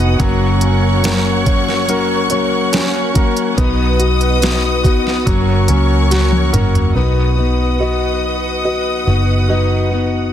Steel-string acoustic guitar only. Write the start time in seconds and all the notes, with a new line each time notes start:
Already playing: B3 D#4 F#4
0.18 F#2 C#3 F#3 A#3 C#4 F#4
1.03 F#3 A#3 C#4 F#4
1.46 F#3 A#3 C#4 F#4
1.88 F#3 A#3 C#4 F#4
2.30 F#3 A#3 C#4 F#4
3.14 F#3 A#3 C#4 F#4
3.57 B2 F#3 B3 D#4 F#4
4.41 F#3 B3 D#4 F#4
4.84 B3 D#4 F#4
5.26 F#3 A#3 C#4 F#4
5.68 F#3 A#3 C#4 F#4
6.53 F#3 A#3 C#4 F#4
6.95 B2 F#3 B3 D#4 F#4
7.38 B3 D#4 F#4
7.80 F#3 B3 D#4 F#4
9.07 B3 D#4 F#4
9.49 F#3 B3 D#4 F#4
9.91 B3 D#4 F#4